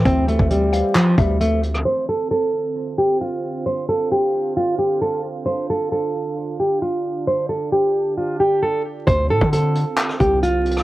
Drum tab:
HH |x---x---x---x---x---x---x---x-x-|--------------------------------|--------------------------------|--------------------------------|
CP |----------------x---------------|--------------------------------|--------------------------------|--------------------------------|
SD |------------------------------r-|--------------------------------|--------------------------------|--------------------------------|
BD |o-----o-------------o-----------|--------------------------------|--------------------------------|--------------------------------|

HH |--------------------------------|x-------x---x---x---x---x---xxx-|
CP |--------------------------------|----------------x---------------|
SD |--------------------------------|------------------r-----------r-|
BD |--------------------------------|o-----o-------------o-----------|